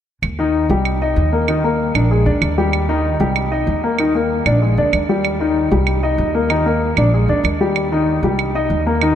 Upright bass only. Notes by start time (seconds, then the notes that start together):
0.22 D#2
0.70 C2
1.16 D#2
1.95 A#1
2.26 D2
2.42 D#2
3.20 C2
3.67 D#2
4.46 A#1
4.77 D2
4.93 D#2
5.71 C2
6.18 D#2
6.97 A#1
7.28 D2
7.44 D#2
8.23 C2
8.70 D#2